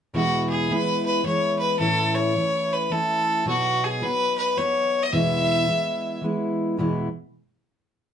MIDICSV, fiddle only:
0, 0, Header, 1, 2, 480
1, 0, Start_track
1, 0, Key_signature, 4, "major"
1, 0, Tempo, 552995
1, 129, Time_signature, 3, 2, 24, 8
1, 7059, End_track
2, 0, Start_track
2, 0, Title_t, "Fiddle"
2, 0, Program_c, 0, 110
2, 126, Note_on_c, 0, 66, 83
2, 412, Note_off_c, 0, 66, 0
2, 430, Note_on_c, 0, 68, 72
2, 623, Note_on_c, 0, 71, 86
2, 636, Note_off_c, 0, 68, 0
2, 911, Note_off_c, 0, 71, 0
2, 917, Note_on_c, 0, 71, 81
2, 1079, Note_off_c, 0, 71, 0
2, 1090, Note_on_c, 0, 73, 83
2, 1373, Note_off_c, 0, 73, 0
2, 1379, Note_on_c, 0, 71, 81
2, 1549, Note_off_c, 0, 71, 0
2, 1555, Note_on_c, 0, 69, 95
2, 1863, Note_on_c, 0, 73, 90
2, 1876, Note_off_c, 0, 69, 0
2, 2367, Note_on_c, 0, 71, 76
2, 2380, Note_off_c, 0, 73, 0
2, 2528, Note_on_c, 0, 69, 85
2, 2541, Note_off_c, 0, 71, 0
2, 3011, Note_off_c, 0, 69, 0
2, 3022, Note_on_c, 0, 66, 92
2, 3330, Note_on_c, 0, 68, 81
2, 3343, Note_off_c, 0, 66, 0
2, 3493, Note_on_c, 0, 71, 99
2, 3506, Note_off_c, 0, 68, 0
2, 3791, Note_off_c, 0, 71, 0
2, 3796, Note_on_c, 0, 71, 91
2, 3972, Note_on_c, 0, 73, 88
2, 3985, Note_off_c, 0, 71, 0
2, 4360, Note_on_c, 0, 75, 85
2, 4373, Note_off_c, 0, 73, 0
2, 4450, Note_off_c, 0, 75, 0
2, 4454, Note_on_c, 0, 76, 94
2, 5379, Note_off_c, 0, 76, 0
2, 7059, End_track
0, 0, End_of_file